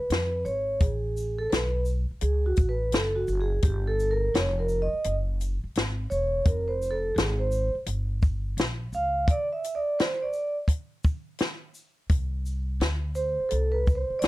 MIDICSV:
0, 0, Header, 1, 5, 480
1, 0, Start_track
1, 0, Tempo, 705882
1, 548, Time_signature, 4, 2, 24, 8
1, 9709, End_track
2, 0, Start_track
2, 0, Title_t, "Vibraphone"
2, 0, Program_c, 0, 11
2, 0, Note_on_c, 0, 71, 92
2, 281, Note_off_c, 0, 71, 0
2, 306, Note_on_c, 0, 73, 82
2, 549, Note_on_c, 0, 68, 80
2, 554, Note_off_c, 0, 73, 0
2, 919, Note_off_c, 0, 68, 0
2, 942, Note_on_c, 0, 69, 80
2, 1020, Note_on_c, 0, 71, 74
2, 1029, Note_off_c, 0, 69, 0
2, 1247, Note_off_c, 0, 71, 0
2, 1508, Note_on_c, 0, 68, 76
2, 1673, Note_off_c, 0, 68, 0
2, 1673, Note_on_c, 0, 66, 85
2, 1820, Note_off_c, 0, 66, 0
2, 1829, Note_on_c, 0, 71, 76
2, 1993, Note_off_c, 0, 71, 0
2, 1993, Note_on_c, 0, 69, 84
2, 2139, Note_off_c, 0, 69, 0
2, 2145, Note_on_c, 0, 66, 76
2, 2311, Note_off_c, 0, 66, 0
2, 2316, Note_on_c, 0, 68, 79
2, 2473, Note_on_c, 0, 67, 95
2, 2477, Note_off_c, 0, 68, 0
2, 2634, Note_on_c, 0, 69, 91
2, 2635, Note_off_c, 0, 67, 0
2, 2794, Note_on_c, 0, 70, 82
2, 2796, Note_off_c, 0, 69, 0
2, 2956, Note_off_c, 0, 70, 0
2, 2958, Note_on_c, 0, 73, 89
2, 3028, Note_off_c, 0, 73, 0
2, 3121, Note_on_c, 0, 70, 81
2, 3264, Note_off_c, 0, 70, 0
2, 3278, Note_on_c, 0, 75, 96
2, 3497, Note_off_c, 0, 75, 0
2, 4148, Note_on_c, 0, 73, 101
2, 4392, Note_on_c, 0, 70, 96
2, 4395, Note_off_c, 0, 73, 0
2, 4541, Note_on_c, 0, 72, 90
2, 4555, Note_off_c, 0, 70, 0
2, 4696, Note_on_c, 0, 69, 85
2, 4710, Note_off_c, 0, 72, 0
2, 4851, Note_off_c, 0, 69, 0
2, 4861, Note_on_c, 0, 68, 78
2, 5013, Note_off_c, 0, 68, 0
2, 5023, Note_on_c, 0, 72, 76
2, 5249, Note_off_c, 0, 72, 0
2, 6083, Note_on_c, 0, 77, 97
2, 6322, Note_off_c, 0, 77, 0
2, 6326, Note_on_c, 0, 74, 108
2, 6394, Note_off_c, 0, 74, 0
2, 6477, Note_on_c, 0, 76, 89
2, 6630, Note_on_c, 0, 74, 89
2, 6637, Note_off_c, 0, 76, 0
2, 6794, Note_off_c, 0, 74, 0
2, 6794, Note_on_c, 0, 72, 80
2, 6951, Note_on_c, 0, 74, 72
2, 6956, Note_off_c, 0, 72, 0
2, 7173, Note_off_c, 0, 74, 0
2, 8944, Note_on_c, 0, 72, 92
2, 9174, Note_on_c, 0, 69, 79
2, 9193, Note_off_c, 0, 72, 0
2, 9328, Note_on_c, 0, 71, 93
2, 9346, Note_off_c, 0, 69, 0
2, 9486, Note_off_c, 0, 71, 0
2, 9488, Note_on_c, 0, 72, 93
2, 9651, Note_on_c, 0, 74, 103
2, 9663, Note_off_c, 0, 72, 0
2, 9709, Note_off_c, 0, 74, 0
2, 9709, End_track
3, 0, Start_track
3, 0, Title_t, "Upright bass"
3, 0, Program_c, 1, 32
3, 69, Note_on_c, 1, 41, 88
3, 297, Note_off_c, 1, 41, 0
3, 308, Note_on_c, 1, 32, 80
3, 536, Note_off_c, 1, 32, 0
3, 550, Note_on_c, 1, 33, 101
3, 1005, Note_off_c, 1, 33, 0
3, 1036, Note_on_c, 1, 35, 88
3, 1410, Note_off_c, 1, 35, 0
3, 1510, Note_on_c, 1, 37, 90
3, 1737, Note_off_c, 1, 37, 0
3, 1755, Note_on_c, 1, 33, 94
3, 1980, Note_off_c, 1, 33, 0
3, 1995, Note_on_c, 1, 30, 94
3, 2220, Note_off_c, 1, 30, 0
3, 2230, Note_on_c, 1, 30, 84
3, 2457, Note_off_c, 1, 30, 0
3, 2470, Note_on_c, 1, 31, 105
3, 2925, Note_off_c, 1, 31, 0
3, 2953, Note_on_c, 1, 29, 93
3, 3329, Note_off_c, 1, 29, 0
3, 3435, Note_on_c, 1, 30, 95
3, 3810, Note_off_c, 1, 30, 0
3, 3918, Note_on_c, 1, 32, 88
3, 4141, Note_off_c, 1, 32, 0
3, 4159, Note_on_c, 1, 28, 74
3, 4382, Note_off_c, 1, 28, 0
3, 4393, Note_on_c, 1, 29, 92
3, 4846, Note_off_c, 1, 29, 0
3, 4869, Note_on_c, 1, 32, 97
3, 5247, Note_off_c, 1, 32, 0
3, 5348, Note_on_c, 1, 31, 91
3, 5804, Note_off_c, 1, 31, 0
3, 5828, Note_on_c, 1, 34, 85
3, 6056, Note_off_c, 1, 34, 0
3, 6069, Note_on_c, 1, 37, 74
3, 6297, Note_off_c, 1, 37, 0
3, 8228, Note_on_c, 1, 36, 88
3, 8684, Note_off_c, 1, 36, 0
3, 8706, Note_on_c, 1, 38, 90
3, 9085, Note_off_c, 1, 38, 0
3, 9192, Note_on_c, 1, 36, 95
3, 9568, Note_off_c, 1, 36, 0
3, 9670, Note_on_c, 1, 35, 94
3, 9709, Note_off_c, 1, 35, 0
3, 9709, End_track
4, 0, Start_track
4, 0, Title_t, "Muted upright bass strokes"
4, 1434, Note_on_c, 9, 29, 46
4, 1502, Note_off_c, 9, 29, 0
4, 3354, Note_on_c, 9, 29, 43
4, 3422, Note_off_c, 9, 29, 0
4, 3833, Note_on_c, 9, 29, 53
4, 3901, Note_off_c, 9, 29, 0
4, 5271, Note_on_c, 9, 29, 51
4, 5339, Note_off_c, 9, 29, 0
4, 9111, Note_on_c, 9, 29, 49
4, 9179, Note_off_c, 9, 29, 0
4, 9589, Note_on_c, 9, 29, 54
4, 9657, Note_off_c, 9, 29, 0
4, 9709, End_track
5, 0, Start_track
5, 0, Title_t, "Drums"
5, 69, Note_on_c, 9, 42, 61
5, 84, Note_on_c, 9, 38, 108
5, 137, Note_off_c, 9, 42, 0
5, 152, Note_off_c, 9, 38, 0
5, 310, Note_on_c, 9, 82, 43
5, 378, Note_off_c, 9, 82, 0
5, 546, Note_on_c, 9, 42, 88
5, 549, Note_on_c, 9, 36, 110
5, 614, Note_off_c, 9, 42, 0
5, 617, Note_off_c, 9, 36, 0
5, 794, Note_on_c, 9, 82, 52
5, 862, Note_off_c, 9, 82, 0
5, 1034, Note_on_c, 9, 42, 75
5, 1039, Note_on_c, 9, 38, 115
5, 1102, Note_off_c, 9, 42, 0
5, 1107, Note_off_c, 9, 38, 0
5, 1260, Note_on_c, 9, 82, 45
5, 1328, Note_off_c, 9, 82, 0
5, 1502, Note_on_c, 9, 42, 74
5, 1570, Note_off_c, 9, 42, 0
5, 1745, Note_on_c, 9, 42, 47
5, 1745, Note_on_c, 9, 82, 41
5, 1752, Note_on_c, 9, 36, 81
5, 1813, Note_off_c, 9, 42, 0
5, 1813, Note_off_c, 9, 82, 0
5, 1820, Note_off_c, 9, 36, 0
5, 1986, Note_on_c, 9, 42, 62
5, 2001, Note_on_c, 9, 38, 115
5, 2054, Note_off_c, 9, 42, 0
5, 2069, Note_off_c, 9, 38, 0
5, 2228, Note_on_c, 9, 82, 43
5, 2296, Note_off_c, 9, 82, 0
5, 2464, Note_on_c, 9, 42, 96
5, 2469, Note_on_c, 9, 36, 101
5, 2532, Note_off_c, 9, 42, 0
5, 2537, Note_off_c, 9, 36, 0
5, 2717, Note_on_c, 9, 82, 49
5, 2785, Note_off_c, 9, 82, 0
5, 2956, Note_on_c, 9, 42, 72
5, 2961, Note_on_c, 9, 38, 113
5, 3024, Note_off_c, 9, 42, 0
5, 3029, Note_off_c, 9, 38, 0
5, 3187, Note_on_c, 9, 82, 42
5, 3255, Note_off_c, 9, 82, 0
5, 3429, Note_on_c, 9, 42, 74
5, 3497, Note_off_c, 9, 42, 0
5, 3677, Note_on_c, 9, 42, 44
5, 3677, Note_on_c, 9, 82, 50
5, 3745, Note_off_c, 9, 42, 0
5, 3745, Note_off_c, 9, 82, 0
5, 3913, Note_on_c, 9, 42, 60
5, 3927, Note_on_c, 9, 38, 106
5, 3981, Note_off_c, 9, 42, 0
5, 3995, Note_off_c, 9, 38, 0
5, 4156, Note_on_c, 9, 82, 44
5, 4224, Note_off_c, 9, 82, 0
5, 4388, Note_on_c, 9, 42, 92
5, 4391, Note_on_c, 9, 36, 111
5, 4456, Note_off_c, 9, 42, 0
5, 4459, Note_off_c, 9, 36, 0
5, 4638, Note_on_c, 9, 82, 53
5, 4706, Note_off_c, 9, 82, 0
5, 4880, Note_on_c, 9, 42, 68
5, 4885, Note_on_c, 9, 38, 117
5, 4948, Note_off_c, 9, 42, 0
5, 4953, Note_off_c, 9, 38, 0
5, 5110, Note_on_c, 9, 82, 53
5, 5178, Note_off_c, 9, 82, 0
5, 5348, Note_on_c, 9, 42, 72
5, 5416, Note_off_c, 9, 42, 0
5, 5593, Note_on_c, 9, 82, 45
5, 5594, Note_on_c, 9, 36, 82
5, 5661, Note_off_c, 9, 82, 0
5, 5662, Note_off_c, 9, 36, 0
5, 5831, Note_on_c, 9, 42, 65
5, 5846, Note_on_c, 9, 38, 107
5, 5899, Note_off_c, 9, 42, 0
5, 5914, Note_off_c, 9, 38, 0
5, 6072, Note_on_c, 9, 82, 44
5, 6140, Note_off_c, 9, 82, 0
5, 6309, Note_on_c, 9, 36, 111
5, 6310, Note_on_c, 9, 42, 93
5, 6377, Note_off_c, 9, 36, 0
5, 6378, Note_off_c, 9, 42, 0
5, 6558, Note_on_c, 9, 42, 55
5, 6558, Note_on_c, 9, 82, 52
5, 6626, Note_off_c, 9, 42, 0
5, 6626, Note_off_c, 9, 82, 0
5, 6796, Note_on_c, 9, 42, 75
5, 6802, Note_on_c, 9, 38, 114
5, 6864, Note_off_c, 9, 42, 0
5, 6870, Note_off_c, 9, 38, 0
5, 7025, Note_on_c, 9, 82, 51
5, 7093, Note_off_c, 9, 82, 0
5, 7261, Note_on_c, 9, 36, 73
5, 7265, Note_on_c, 9, 42, 79
5, 7329, Note_off_c, 9, 36, 0
5, 7333, Note_off_c, 9, 42, 0
5, 7506, Note_on_c, 9, 82, 44
5, 7511, Note_on_c, 9, 36, 87
5, 7574, Note_off_c, 9, 82, 0
5, 7579, Note_off_c, 9, 36, 0
5, 7742, Note_on_c, 9, 42, 71
5, 7757, Note_on_c, 9, 38, 109
5, 7810, Note_off_c, 9, 42, 0
5, 7825, Note_off_c, 9, 38, 0
5, 7987, Note_on_c, 9, 82, 47
5, 8055, Note_off_c, 9, 82, 0
5, 8224, Note_on_c, 9, 42, 91
5, 8226, Note_on_c, 9, 36, 109
5, 8292, Note_off_c, 9, 42, 0
5, 8294, Note_off_c, 9, 36, 0
5, 8472, Note_on_c, 9, 82, 55
5, 8540, Note_off_c, 9, 82, 0
5, 8710, Note_on_c, 9, 42, 75
5, 8715, Note_on_c, 9, 38, 115
5, 8778, Note_off_c, 9, 42, 0
5, 8783, Note_off_c, 9, 38, 0
5, 8943, Note_on_c, 9, 82, 51
5, 9011, Note_off_c, 9, 82, 0
5, 9183, Note_on_c, 9, 42, 74
5, 9251, Note_off_c, 9, 42, 0
5, 9432, Note_on_c, 9, 82, 45
5, 9434, Note_on_c, 9, 36, 81
5, 9500, Note_off_c, 9, 82, 0
5, 9502, Note_off_c, 9, 36, 0
5, 9667, Note_on_c, 9, 42, 69
5, 9682, Note_on_c, 9, 38, 109
5, 9709, Note_off_c, 9, 38, 0
5, 9709, Note_off_c, 9, 42, 0
5, 9709, End_track
0, 0, End_of_file